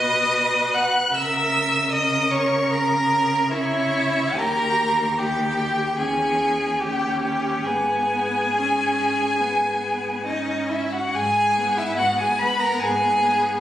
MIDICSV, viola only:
0, 0, Header, 1, 2, 480
1, 0, Start_track
1, 0, Key_signature, 5, "minor"
1, 0, Tempo, 786370
1, 694, Time_signature, 4, 2, 24, 8
1, 1661, Tempo, 817439
1, 3581, Tempo, 837989
1, 4541, Tempo, 864553
1, 6461, Tempo, 827586
1, 7897, End_track
2, 0, Start_track
2, 0, Title_t, "Viola"
2, 0, Program_c, 0, 41
2, 0, Note_on_c, 0, 71, 66
2, 689, Note_on_c, 0, 70, 75
2, 698, Note_off_c, 0, 71, 0
2, 1167, Note_off_c, 0, 70, 0
2, 1170, Note_on_c, 0, 70, 64
2, 2129, Note_on_c, 0, 73, 76
2, 2137, Note_off_c, 0, 70, 0
2, 2630, Note_off_c, 0, 73, 0
2, 2633, Note_on_c, 0, 67, 72
2, 3087, Note_off_c, 0, 67, 0
2, 3114, Note_on_c, 0, 67, 67
2, 3570, Note_off_c, 0, 67, 0
2, 3574, Note_on_c, 0, 61, 58
2, 4041, Note_off_c, 0, 61, 0
2, 4058, Note_on_c, 0, 61, 58
2, 4541, Note_on_c, 0, 59, 56
2, 4549, Note_off_c, 0, 61, 0
2, 4979, Note_off_c, 0, 59, 0
2, 5024, Note_on_c, 0, 61, 67
2, 5502, Note_on_c, 0, 59, 53
2, 5511, Note_off_c, 0, 61, 0
2, 5978, Note_on_c, 0, 61, 62
2, 5987, Note_off_c, 0, 59, 0
2, 6460, Note_off_c, 0, 61, 0
2, 6707, Note_on_c, 0, 59, 75
2, 7186, Note_off_c, 0, 59, 0
2, 7204, Note_on_c, 0, 59, 75
2, 7664, Note_off_c, 0, 59, 0
2, 7671, Note_on_c, 0, 59, 64
2, 7897, Note_off_c, 0, 59, 0
2, 7897, End_track
0, 0, End_of_file